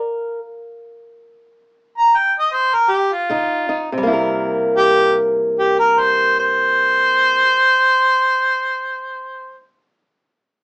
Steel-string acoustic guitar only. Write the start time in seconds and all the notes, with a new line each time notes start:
Already playing: A#4
3.30 C#3 D#4
3.69 D#4
3.92 C3
3.98 G3
4.03 A#3 E4
4.13 A#4